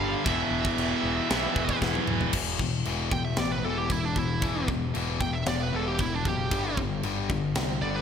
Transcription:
Already playing: distorted electric guitar G2 D3 G3, string section G3 D4 A4 B4
0.00 picked electric bass G1, lead electric guitar F5
0.24 picked electric bass E1, distorted electric guitar E2 B2 E3, string section E3 B3 E4 G4, lead electric guitar E5, kick, china
0.28 distorted electric guitar E3
0.51 picked electric bass E1
0.65 kick
0.77 picked electric bass E1, china
1.03 picked electric bass E1, distorted electric guitar E2 B2 E3
1.29 picked electric bass B1, distorted electric guitar E2 B2 E3, snare, china
1.56 picked electric bass E1, kick
1.69 kick
1.80 picked electric bass E1, distorted electric guitar E2 B2 E3, kick, snare
1.95 high tom
2.07 picked electric bass E1, mid tom
2.21 floor tom
2.33 picked electric bass E1, distorted electric guitar E2 B2 E3, kick, crash
2.59 picked electric bass E1, distorted electric guitar E2 B2, kick
2.85 picked electric bass E1, distorted electric guitar E2 B2 E3, crash
3.11 picked electric bass E1, distorted electric guitar E2 B2, lead electric guitar G5, kick
3.25 lead electric guitar E5
3.37 picked electric bass A1, distorted electric guitar E2 B2, lead electric guitar D5, snare, crash
3.52 lead electric guitar B4
3.64 picked electric bass E1, distorted electric guitar E2 B2 E3, lead electric guitar A4
3.78 lead electric guitar G4
3.90 picked electric bass E1, distorted electric guitar E2 B2, lead electric guitar E4, kick, crash
4.05 lead electric guitar D4
4.16 distorted electric guitar E2 B2, lead electric guitar E4, kick
4.42 picked electric bass E1, distorted electric guitar E2 B2 E3, kick, crash
4.68 picked electric bass E1, distorted electric guitar E2 B2, kick
4.94 picked electric bass E1, distorted electric guitar E2 B2 E3, crash
5.20 distorted electric guitar E2 B2, lead electric guitar G5, kick
5.33 lead electric guitar E5
5.46 picked electric bass E1, distorted electric guitar E2 B2, lead electric guitar D5, snare, crash
5.62 lead electric guitar B4
5.73 picked electric bass E1, distorted electric guitar E2 B2 E3, lead electric guitar A4
5.88 lead electric guitar G4
5.98 picked electric bass E1, distorted electric guitar E2 B2, lead electric guitar E4, kick, crash
6.15 lead electric guitar D4
6.25 picked electric bass F#1, distorted electric guitar E2 B2, lead electric guitar G4, kick
6.51 picked electric bass G1, distorted electric guitar G2 D3 G3, kick, crash
6.77 picked electric bass G1, distorted electric guitar G2 D3, kick
7.03 picked electric bass G1, distorted electric guitar G2 D3 G3, crash
7.30 picked electric bass G1, distorted electric guitar G2 D3, kick
7.55 picked electric bass C2, distorted electric guitar G2 D3, snare, crash
7.81 picked electric bass G1, distorted electric guitar G2 D3 G3, lead electric guitar D5
7.96 lead electric guitar B4

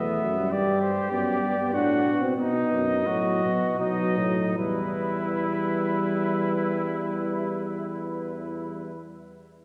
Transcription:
Already playing: tuba E2, euphonium A3, trumpet B3, cornet E5
0.24 tuba F#2
0.37 euphonium G3
0.51 tuba G2, euphonium G3, trumpet G4, cornet D5
0.81 cornet C5
1.11 tuba F#2, euphonium B3, cornet D5
1.42 tuba G2
1.58 euphonium B3
1.73 tuba A2, euphonium D4, trumpet F#4, cornet F#5
2.06 tuba B2
2.22 euphonium C4
2.38 tuba B2, euphonium B3, trumpet D#4, cornet D#5
2.72 tuba F#2
3.06 tuba A2, euphonium F#3, trumpet F#4
3.43 tuba B2
3.79 tuba B2, euphonium F#3, trumpet D#4, cornet D#5
4.18 tuba A2
4.57 tuba E2, euphonium G3, trumpet E4, cornet B4

